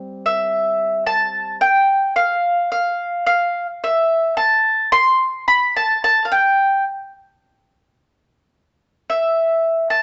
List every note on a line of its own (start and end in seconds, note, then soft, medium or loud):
0.00 1.62 G3 medium
0.00 1.62 C4 medium
0.26 1.04 E5 medium
1.07 1.61 A5 medium
1.61 2.16 G5 medium
2.16 2.71 F5 medium
2.72 3.25 F5 medium
3.26 3.66 F5 medium
3.84 4.35 E5 medium
4.37 4.92 A5 medium
4.92 5.47 C6 loud
5.48 5.76 B5 medium
5.76 6.03 A5 medium
6.04 6.26 A5 medium
6.25 6.32 F5 medium
6.32 6.83 G5 medium
9.10 9.95 E5 medium
9.90 10.03 A5 medium